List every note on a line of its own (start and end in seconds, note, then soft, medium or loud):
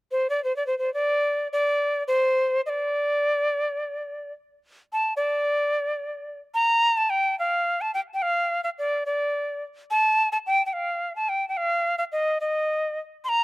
0.11 0.27 C5 medium
0.30 0.43 D5 medium
0.44 0.55 C5 medium
0.56 0.66 D5 medium
0.67 0.78 C5 medium
0.78 0.92 C5 medium
0.94 1.48 D5 medium
1.53 2.03 D5 medium
2.08 2.61 C5 medium
2.66 4.33 D5 medium
2.66 2.70 D#5 medium
4.93 5.14 A5 medium
5.17 6.39 D5 medium
6.54 6.99 A#5 loud
6.97 7.11 A5 medium
7.10 7.38 G5 medium
7.39 7.83 F5 medium
7.81 7.94 A5 medium
7.94 8.00 G5 medium
8.14 8.24 G5 medium
8.22 8.63 F5 medium
8.64 8.70 F5 medium
8.79 9.04 D5 medium
9.06 9.64 D5 medium
9.91 10.29 A5 medium
10.32 10.38 A5 medium
10.47 10.65 G5 medium
10.66 10.75 G5 soft
10.73 11.15 F5 medium
11.16 11.30 A5 medium
11.29 11.48 G5 medium
11.49 11.59 G5 medium
11.57 11.98 F5 medium
11.98 12.04 F5 medium
12.12 12.38 D#5 medium
12.41 12.99 D#5 medium
13.24 13.30 C6 medium
13.29 13.44 A#5 medium